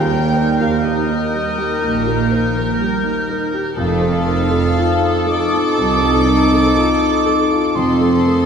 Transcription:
Already playing: double bass section D#2, cello section D#2, grand piano D#2, viola section G3 D#4, french horn section G3, oboe A#4, violin section A#4 G5, clarinet G5, flute section G6
0.11 viola section A#3, grand piano A#4
0.36 viola section D#4, grand piano C5
0.60 french horn section F3, viola section G4, grand piano A#4, violin section F5, clarinet F5
0.84 french horn section D#3, viola section D#4, grand piano G4, violin section D#5, clarinet D#5
1.08 viola section A#3, grand piano D#4
1.33 viola section G3, grand piano A#4
1.58 viola section A#3, grand piano G4
1.81 double bass section A#1, grand piano A#2, cello section A#2, viola section D#4
2.06 viola section G4, grand piano A#4
2.31 viola section D#4, grand piano C5
2.55 viola section A#3, grand piano A#4
2.79 viola section G3, grand piano G4
3.03 viola section A#3, grand piano D#4
3.29 viola section D#4, grand piano A#4
3.53 viola section G4, grand piano G4
3.76 double bass section F1, grand piano F2, cello section F2, french horn section F3, viola section A3 D#4, oboe A4, violin section A4 F5, clarinet F5, flute section D#6
4.01 viola section C4, grand piano A4
4.26 viola section D#4, grand piano A#4
4.51 viola section F4, grand piano A4
4.77 viola section D#4, grand piano F4
5.02 viola section C4, grand piano D#4
5.27 viola section A3, french horn section D#4, grand piano A4, violin section D6, clarinet D6
5.52 viola section C4, grand piano F4
5.77 double bass section C2, cello section C2, grand piano C3, viola section D#4
6.02 viola section F4, grand piano A4
6.26 viola section D#4, grand piano A#4
6.52 viola section C4, grand piano A4
6.76 viola section A3, grand piano F4
7.01 viola section C4, grand piano D#4
7.26 viola section D#4, grand piano A4
7.52 viola section F4, grand piano F4
7.75 double bass section F1, cello section F2, grand piano F2, french horn section C4, viola section D#4, violin section A4 C6, oboe A4, clarinet C6, flute section D#6
8.01 viola section C4, grand piano A4
8.26 viola section A3, grand piano A#4

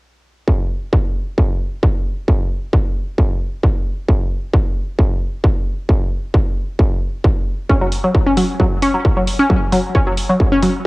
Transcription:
0.48 kick
0.93 kick
1.38 kick
1.83 kick
2.28 kick
2.73 kick
3.18 kick
3.63 kick
4.08 kick
4.54 kick
4.99 kick
5.44 kick
5.89 kick
6.34 kick
6.79 kick
7.24 kick
7.69 synth arpeggio sound C#4, kick
7.81 synth arpeggio sound F#3
7.92 open hi-hat
8.04 synth arpeggio sound F#3
8.14 kick
8.26 synth arpeggio sound C#4
8.37 synth arpeggio sound F#3, open hi-hat
8.60 synth arpeggio sound F#3, kick
8.82 synth arpeggio sound C#4, open hi-hat
8.94 synth arpeggio sound F#3
9.05 kick
9.17 synth arpeggio sound F#3
9.27 open hi-hat
9.39 synth arpeggio sound C#4
9.50 synth arpeggio sound F#3, kick
9.72 synth arpeggio sound F#3, open hi-hat
9.95 synth arpeggio sound C#4, kick
10.07 synth arpeggio sound F#3
10.17 open hi-hat
10.29 synth arpeggio sound F#3
10.40 kick
10.52 synth arpeggio sound C#4
10.63 synth arpeggio sound F#3, open hi-hat

